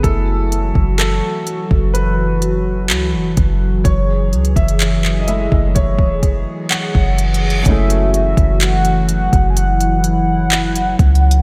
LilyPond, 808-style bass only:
\new Staff \with { instrumentName = "808-style bass" } { \clef bass \time 4/4 \key fis \minor \tempo 4 = 63 fis,,8. fis,,8 r8 fis,,4~ fis,,16 cis,16 fis,,16 fis,,8 | fis,,8 cis,16 fis,,4 fis,,8 e,,16 fis,,16 r8 fis,,8. | fis,,8. fis,,4 fis,,4.~ fis,,16 cis,8 | }